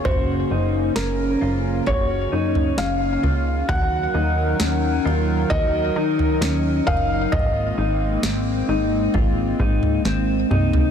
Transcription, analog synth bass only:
\new Staff \with { instrumentName = "Analog synth bass" } { \clef bass \time 4/4 \key ges \lydian \tempo 4 = 66 ges,,8 ges,,8 ges,,8 ges,,8 ges,,8 ges,8 ges,,8 des,8 | ees,8 ees,8 ees,8 ees,8 ees,8 ees8 ees,8 ges,,8 | aes,,8 aes,,8 aes,,8 aes,,8 aes,,8 aes,8 aes,,8 c,8 | }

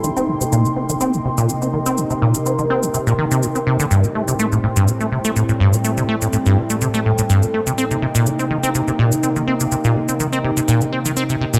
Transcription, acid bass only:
\new Staff \with { instrumentName = "Acid bass" } { \clef bass \time 4/4 \key c \lydian \tempo 4 = 124 ees16 c'16 c16 c16 bes,16 ees16 c'16 ees16 c'16 c16 c16 bes,16 ees16 c'16 ees16 c'16 | c16 c16 bes,16 ees16 c'16 ees16 c'16 c16 c16 bes,16 ees16 c16 bes,16 c'16 c16 d16 | g,16 c16 a16 c16 a16 a,16 a,16 g,16 c16 a16 c16 a16 a,16 a,16 g,16 c16 | a16 c16 a16 a,16 a,16 g,16 c16 a16 c16 a16 a,16 a,16 g,16 c16 a16 c16 |
c'16 c16 c16 bes,16 ees16 c'16 ees16 c'16 c16 c16 bes,16 ees16 c'16 ees16 c'16 c16 | c16 bes,16 ees16 c'16 ees16 c'16 c16 c16 bes,16 ees16 c'16 ees16 c'16 c16 c16 bes,16 | }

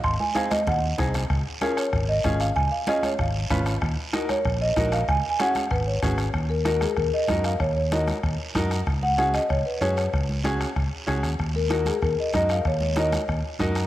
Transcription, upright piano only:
\new Staff \with { instrumentName = "Upright piano" } { \time 4/4 \key ees \minor \tempo 4 = 190 r4 <c' ees' aes'>8 r4. <c' ees' aes'>8 r8 | r4 <des' f' aes'>8 r4. <des' f' aes'>8 r8 | r4 <des' f' aes'>8 r4. <des' f' ces''>8 r8 | r4 <ees' ges' bes'>8 r4. <ees' ges' bes'>8 r8 |
r4 <des' ges' aes'>8 r4. <des' ges' aes'>8 r8 | r4 <ees' ges' bes'>8 r4. <ees' ges' bes'>8 r8 | r4 <ees' ges' bes'>8 r4. <ees' ges' bes'>8 r8 | r4 <des' ges' aes'>8 r4. <des' ges' aes'>8 r8 |
r4 <des' ges' aes'>8 r4. <des' ges' aes'>8 r8 | r4 <ees' ges' bes'>8 r4. <ees' ges' bes'>8 r8 | r4 <ees' ges' bes'>8 r4. <ees' ges' bes'>8 r8 | }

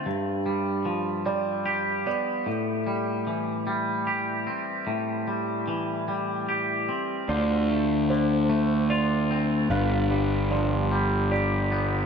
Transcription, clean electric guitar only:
\new Staff \with { instrumentName = "Clean electric guitar" } { \clef bass \time 6/8 \key a \minor \tempo 4. = 50 g,8 g8 f8 g8 g'8 b8 | a,8 g8 e8 g8 g'8 c'8 | a,8 g8 e8 g8 g'8 c'8 | d8 a8 d8 a8 f'8 c'8 |
g,8 g8 f8 g8 g'8 b8 | }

